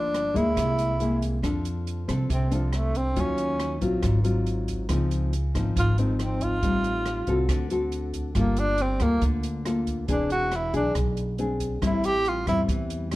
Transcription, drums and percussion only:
0.14 cross-stick medium
0.14 closed hi-hat soft
0.35 kick soft
0.35 closed hi-hat soft
0.57 kick medium
0.57 cross-stick medium
0.57 closed hi-hat medium
0.79 closed hi-hat soft
1.00 closed hi-hat soft
1.22 kick soft
1.22 closed hi-hat soft
1.43 kick medium
1.43 cross-stick medium
1.43 closed hi-hat medium
1.65 closed hi-hat soft
1.87 closed hi-hat soft
2.08 kick soft
2.08 cross-stick medium
2.08 closed hi-hat soft
2.30 kick medium
2.30 closed hi-hat medium
2.52 closed hi-hat soft
2.73 cross-stick medium
2.73 closed hi-hat soft
2.95 kick soft
2.95 closed hi-hat soft
3.16 kick soft
3.16 closed hi-hat soft
3.38 closed hi-hat soft
3.60 cross-stick medium
3.60 closed hi-hat soft
3.81 kick soft
3.81 closed hi-hat soft
4.03 kick medium
4.03 cross-stick medium
4.03 closed hi-hat medium
4.24 closed hi-hat soft
4.46 closed hi-hat soft
4.68 kick soft
4.68 closed hi-hat soft
4.89 kick medium
4.89 cross-stick medium
4.89 closed hi-hat medium
5.11 closed hi-hat soft
5.33 closed hi-hat soft
5.55 kick soft
5.55 cross-stick soft
5.55 closed hi-hat soft
5.76 kick medium
5.76 closed hi-hat medium
5.98 closed hi-hat soft
6.19 cross-stick soft
6.19 closed hi-hat soft
6.41 kick soft
6.41 closed hi-hat soft
6.62 kick medium
6.62 closed hi-hat soft
6.84 closed hi-hat soft
7.06 cross-stick medium
7.06 closed hi-hat soft
7.27 kick soft
7.27 closed hi-hat soft
7.49 kick medium
7.49 cross-stick medium
7.49 closed hi-hat medium
7.70 closed hi-hat soft
7.92 closed hi-hat soft
8.14 kick soft
8.14 closed hi-hat soft
8.35 kick medium
8.35 cross-stick medium
8.35 closed hi-hat medium
8.57 closed hi-hat soft
8.78 closed hi-hat soft
9.00 kick soft
9.00 cross-stick soft
9.00 closed hi-hat soft
9.21 kick medium
9.21 closed hi-hat medium
9.43 closed hi-hat soft
9.65 cross-stick medium
9.65 closed hi-hat soft
9.87 kick soft
9.87 closed hi-hat soft
10.08 kick medium
10.08 closed hi-hat medium
10.30 closed hi-hat soft
10.52 cross-stick medium
10.52 closed hi-hat soft
10.74 kick soft
10.74 closed hi-hat soft
10.95 kick medium
10.95 cross-stick medium
10.95 closed hi-hat medium
11.17 closed hi-hat soft
11.38 closed hi-hat soft
11.60 kick soft
11.60 closed hi-hat soft
11.82 kick medium
11.82 cross-stick medium
11.82 closed hi-hat medium
12.04 closed hi-hat soft
12.25 closed hi-hat soft
12.47 kick soft
12.47 cross-stick soft
12.47 closed hi-hat soft
12.68 kick medium
12.68 closed hi-hat medium
12.90 closed hi-hat soft
13.11 cross-stick medium
13.11 closed hi-hat soft

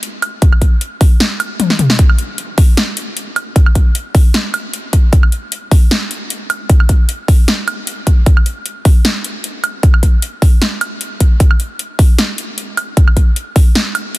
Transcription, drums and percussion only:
0.03 closed hi-hat medium
0.22 closed hi-hat medium
0.22 high woodblock medium
0.42 kick loud
0.42 closed hi-hat medium
0.53 high woodblock medium
0.62 kick medium
0.62 closed hi-hat medium
0.81 closed hi-hat medium
1.01 kick loud
1.01 open hi-hat loud
1.20 snare loud
1.20 closed hi-hat medium
1.40 closed hi-hat medium
1.40 high woodblock medium
1.60 closed hi-hat medium
1.60 high tom medium
1.70 snare medium
1.79 closed hi-hat medium
1.79 mid tom medium
1.90 snare medium
1.99 kick loud
1.99 closed hi-hat medium
2.09 high woodblock medium
2.18 closed hi-hat medium
2.38 closed hi-hat medium
2.58 kick loud
2.58 open hi-hat medium
2.77 snare loud
2.77 closed hi-hat medium
2.97 closed hi-hat medium
3.17 closed hi-hat medium
3.36 closed hi-hat medium
3.36 high woodblock medium
3.56 kick loud
3.56 closed hi-hat medium
3.66 high woodblock medium
3.75 kick medium
3.75 closed hi-hat medium
3.95 closed hi-hat medium
4.15 kick loud
4.15 open hi-hat medium
4.34 snare loud
4.34 closed hi-hat medium
4.54 closed hi-hat medium
4.54 high woodblock medium
4.73 closed hi-hat medium
4.93 kick medium
4.93 closed hi-hat medium
5.13 kick loud
5.13 closed hi-hat medium
5.23 high woodblock medium
5.32 closed hi-hat medium
5.52 closed hi-hat medium
5.71 kick loud
5.71 open hi-hat medium
5.91 snare loud
5.91 closed hi-hat medium
6.11 closed hi-hat medium
6.30 closed hi-hat medium
6.50 closed hi-hat medium
6.50 high woodblock medium
6.70 kick loud
6.70 closed hi-hat medium
6.80 high woodblock medium
6.89 kick medium
6.89 closed hi-hat medium
7.09 closed hi-hat medium
7.28 kick loud
7.28 open hi-hat medium
7.48 snare loud
7.48 closed hi-hat medium
7.68 closed hi-hat medium
7.68 high woodblock medium
7.87 closed hi-hat medium
8.07 kick medium
8.07 closed hi-hat medium
8.26 kick loud
8.26 closed hi-hat medium
8.37 high woodblock medium
8.46 closed hi-hat medium
8.66 closed hi-hat medium
8.85 kick loud
8.85 open hi-hat loud
9.05 snare loud
9.05 closed hi-hat medium
9.24 closed hi-hat medium
9.44 closed hi-hat medium
9.64 closed hi-hat medium
9.64 high woodblock medium
9.83 kick loud
9.83 closed hi-hat medium
9.94 high woodblock medium
10.03 kick medium
10.03 closed hi-hat medium
10.22 closed hi-hat medium
10.42 kick loud
10.42 open hi-hat medium
10.62 snare loud
10.62 closed hi-hat medium
10.81 closed hi-hat medium
10.81 high woodblock medium
11.01 closed hi-hat medium
11.20 kick medium
11.20 closed hi-hat medium
11.40 kick loud
11.40 closed hi-hat medium
11.51 high woodblock medium
11.60 closed hi-hat medium
11.79 closed hi-hat medium
11.99 kick loud
11.99 open hi-hat loud
12.19 snare loud
12.19 closed hi-hat medium
12.38 closed hi-hat medium
12.58 closed hi-hat medium
12.77 closed hi-hat medium
12.77 high woodblock medium
12.97 kick loud
12.97 closed hi-hat medium
13.08 high woodblock medium
13.17 kick medium
13.17 closed hi-hat medium
13.36 closed hi-hat medium
13.56 kick loud
13.56 open hi-hat loud
13.75 snare loud
13.75 closed hi-hat medium
13.95 closed hi-hat medium
13.95 high woodblock medium
14.15 closed hi-hat medium

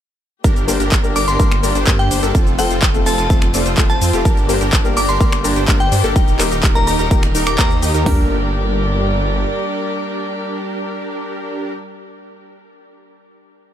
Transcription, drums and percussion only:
0.44 kick loud
0.44 closed hi-hat medium
0.44 shaker soft
0.56 closed hi-hat soft
0.56 shaker soft
0.68 open hi-hat loud
0.68 shaker medium
0.80 closed hi-hat medium
0.80 shaker soft
0.92 kick loud
0.92 clap loud
0.92 closed hi-hat medium
0.92 shaker soft
1.04 closed hi-hat soft
1.04 shaker soft
1.16 open hi-hat loud
1.16 shaker medium
1.28 closed hi-hat medium
1.28 shaker soft
1.40 kick loud
1.40 closed hi-hat medium
1.40 shaker soft
1.52 finger snap medium
1.52 closed hi-hat soft
1.52 shaker soft
1.63 open hi-hat loud
1.63 shaker medium
1.75 closed hi-hat medium
1.75 shaker soft
1.87 kick loud
1.87 clap loud
1.87 closed hi-hat medium
1.87 shaker soft
1.99 closed hi-hat soft
1.99 shaker soft
2.11 open hi-hat loud
2.11 shaker medium
2.23 closed hi-hat medium
2.23 shaker soft
2.35 kick loud
2.35 closed hi-hat medium
2.35 shaker soft
2.47 closed hi-hat soft
2.47 shaker soft
2.59 open hi-hat loud
2.59 shaker medium
2.71 closed hi-hat medium
2.71 shaker soft
2.82 kick loud
2.82 clap loud
2.82 closed hi-hat medium
2.82 shaker soft
2.94 closed hi-hat soft
2.94 shaker soft
3.06 open hi-hat loud
3.06 shaker medium
3.18 closed hi-hat medium
3.18 shaker soft
3.30 kick loud
3.30 closed hi-hat medium
3.30 shaker soft
3.42 finger snap medium
3.42 closed hi-hat soft
3.42 shaker soft
3.54 open hi-hat loud
3.54 shaker medium
3.66 closed hi-hat medium
3.66 shaker soft
3.78 kick loud
3.78 clap loud
3.78 closed hi-hat medium
3.78 shaker soft
3.90 closed hi-hat soft
3.90 shaker soft
4.01 open hi-hat loud
4.01 shaker medium
4.13 closed hi-hat medium
4.13 shaker soft
4.25 kick loud
4.25 closed hi-hat medium
4.25 shaker soft
4.37 closed hi-hat soft
4.37 shaker soft
4.49 open hi-hat loud
4.49 shaker medium
4.61 closed hi-hat soft
4.61 shaker soft
4.73 kick loud
4.73 clap loud
4.73 closed hi-hat medium
4.73 shaker soft
4.85 closed hi-hat soft
4.85 shaker soft
4.97 open hi-hat loud
4.97 shaker medium
5.09 closed hi-hat medium
5.09 shaker soft
5.21 kick loud
5.21 closed hi-hat medium
5.21 shaker soft
5.32 finger snap medium
5.32 closed hi-hat soft
5.32 shaker soft
5.44 open hi-hat loud
5.44 shaker medium
5.56 closed hi-hat medium
5.56 shaker soft
5.68 kick loud
5.68 clap loud
5.68 closed hi-hat medium
5.68 shaker soft
5.80 closed hi-hat soft
5.80 shaker soft
5.92 open hi-hat loud
5.92 shaker medium
6.04 closed hi-hat medium
6.04 shaker soft
6.16 kick loud
6.16 closed hi-hat medium
6.16 shaker soft
6.28 closed hi-hat soft
6.28 shaker soft
6.40 finger snap medium
6.40 clap medium
6.40 open hi-hat loud
6.40 shaker medium
6.51 closed hi-hat medium
6.51 shaker soft
6.63 kick loud
6.63 clap loud
6.63 closed hi-hat medium
6.63 shaker soft
6.75 closed hi-hat soft
6.75 shaker soft
6.87 open hi-hat loud
6.87 shaker medium
6.99 closed hi-hat medium
6.99 shaker soft
7.11 kick loud
7.11 closed hi-hat medium
7.11 shaker soft
7.23 finger snap medium
7.23 closed hi-hat soft
7.23 shaker soft
7.35 open hi-hat loud
7.35 shaker medium
7.47 finger snap medium
7.47 closed hi-hat medium
7.47 shaker soft
7.59 kick loud
7.59 clap loud
7.59 closed hi-hat medium
7.59 shaker soft
7.71 closed hi-hat soft
7.71 shaker soft
7.82 open hi-hat loud
7.82 shaker medium
7.94 closed hi-hat medium
7.94 shaker soft
8.06 kick loud
8.06 floor tom loud
8.06 open hi-hat medium

